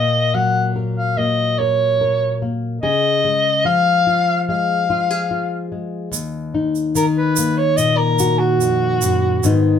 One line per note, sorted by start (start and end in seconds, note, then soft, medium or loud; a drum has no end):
0.00 2.82 A#2 medium
0.00 1.17 A#3 soft
0.00 0.75 A#4 medium
0.00 0.36 D#5 medium
0.34 2.78 F#3 medium
0.34 0.69 F#5 medium
0.76 1.58 A#4 medium
0.97 1.19 F5 medium
1.18 2.41 A#3 soft
1.18 1.60 D#5 medium
1.58 2.00 A#4 medium
1.58 2.41 C#5 medium
2.01 2.78 A#4 soft
2.42 2.78 A#3 soft
2.83 3.65 C#3 medium
2.83 4.90 G#4 medium
2.83 3.61 D#5 medium
3.25 4.48 G#3 medium
3.65 6.08 F3 soft
3.65 4.44 F5 medium
4.07 4.89 F4 soft
4.49 5.71 G#3 soft
4.49 5.69 F5 medium
4.90 5.11 F4 soft
5.11 6.14 G#4 soft
5.31 6.08 F4 soft
5.72 6.13 G#3 soft
6.12 8.60 D#2 medium
6.12 shaker medium
6.54 9.39 D#4 medium
6.75 shaker soft
6.95 9.44 D#3 medium
6.95 7.06 A#4 medium
6.95 shaker medium
7.17 7.59 B4 medium
7.36 9.39 A#3 medium
7.36 shaker medium
7.58 7.79 C#5 medium
7.77 9.44 A#2 soft
7.77 7.99 D#5 medium
7.77 shaker medium
7.97 8.40 A#4 medium
8.19 9.39 F#4 medium
8.19 shaker medium
8.39 9.64 F#4 medium
8.61 9.02 F2 medium
8.61 shaker medium
9.02 9.43 F#2 medium
9.02 shaker medium
9.43 9.79 G#2 medium
9.43 9.79 D#3 medium
9.43 9.79 B3 medium
9.43 9.79 D#4 medium
9.43 shaker medium